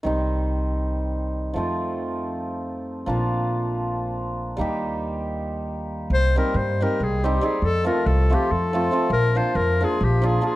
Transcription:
<<
  \new Staff \with { instrumentName = "Clarinet" } { \time 7/8 \key c \minor \tempo 4 = 139 r2. r8 | r2. r8 | r2. r8 | r2. r8 |
c''8 bes'8 c''8 bes'8 aes'8 g'8 aes'8 | a'8 bes'8 a'8 g'8 a'4. | bes'8 c''8 bes'8 aes'8 g'8 aes'8 aes'8 | }
  \new Staff \with { instrumentName = "Hammered dulcimer" } { \time 7/8 \key c \minor <ees g c' ees'>2.~ <ees g c' ees'>8 | <f a c' f'>2.~ <f a c' f'>8 | <f bes d' f'>2.~ <f bes d' f'>8 | <g bes ees' g'>2.~ <g bes ees' g'>8 |
r8 <g c' ees' g'>8 r8 <g c' ees' g'>8 r8 <g c' ees' g'>8 <g c' ees' g'>8 | r8 <f a c' f'>8 r8 <f a c' f'>8 r8 <f a c' f'>8 <f a c' f'>8 | r8 <f bes d' f'>8 r8 <f bes d' f'>8 r8 <f bes d' f'>8 <f bes d' f'>8 | }
  \new Staff \with { instrumentName = "Upright bass" } { \clef bass \time 7/8 \key c \minor c,2.~ c,8 | f,2.~ f,8 | bes,,2.~ bes,,8 | ees,2.~ ees,8 |
c,4 g,4 c,4. | f,4 c,4 f,4. | bes,,4 f,4 bes,,4. | }
>>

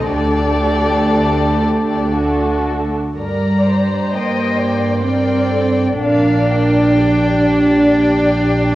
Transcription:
<<
  \new Staff \with { instrumentName = "Violin section" } { \time 3/4 \key g \minor \tempo 4 = 63 d''2~ d''8 r8 | bes''4 g''4 g''4 | f''8 g''4. g''4 | }
  \new Staff \with { instrumentName = "Violin section" } { \time 3/4 \key g \minor <g' a'>2 <fis' a'>4 | d''4 ees''8 d''8 d''4 | d''4 d''4 d''4 | }
  \new Staff \with { instrumentName = "Viola section" } { \time 3/4 \key g \minor <a d'>2 <a d'>4 | bes'8 c''4. bes'8 a'8 | bes'4 g'8 g'4. | }
  \new Staff \with { instrumentName = "Cello section" } { \time 3/4 \key g \minor d2. | g4 bes4 c'4 | d'2. | }
  \new Staff \with { instrumentName = "Double bass section" } { \clef bass \time 3/4 \key g \minor d,2. | g,2. | bes,,2. | }
>>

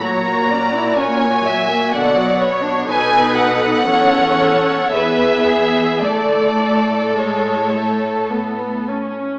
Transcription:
<<
  \new Staff \with { instrumentName = "Violin section" } { \time 3/4 \key a \major \tempo 4 = 58 ais''4 gis''4 fis''8 r8 | gis''8 fis''4. e''4 | d''4 cis''4 r4 | }
  \new Staff \with { instrumentName = "Violin section" } { \time 3/4 \key a \major cis''8 d''8 cis''8 e''8 d''8 cis''8 | b'4 cis''4 b'8 gis'8 | a'2~ a'8 r8 | }
  \new Staff \with { instrumentName = "Viola section" } { \time 3/4 \key a \major << { fis'2. | a'4 a'4 gis'4 | a'4 gis8 a8 b8 cis'8 | } \\ { fis16 ais16 cis'16 e'16 cis'16 ais16 fis16 ais16 d16 fis16 b16 d'16 | dis'4 cis'4 b4 | a4 r2 | } >> }
  \new Staff \with { instrumentName = "Cello section" } { \clef bass \time 3/4 \key a \major ais,2 b,4 | b,4 e,4 e,4 | a,2. | }
>>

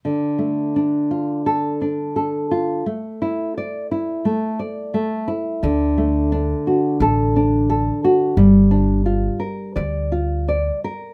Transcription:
<<
  \new Staff \with { instrumentName = "Nylon-string guitar" } { \time 4/4 \key d \minor \tempo 4 = 86 d8 a8 d'8 f'8 a'8 d'8 a'8 f'8 | a8 e'8 d''8 e'8 a8 d''8 a8 e'8 | d8 a8 d'8 fis'8 a'8 d'8 a'8 fis'8 | g8 d'8 f'8 bes'8 d''8 f'8 d''8 bes'8 | }
  \new Staff \with { instrumentName = "Upright bass" } { \clef bass \time 4/4 \key d \minor r1 | r1 | d,2 a,,2 | g,,2 d,2 | }
>>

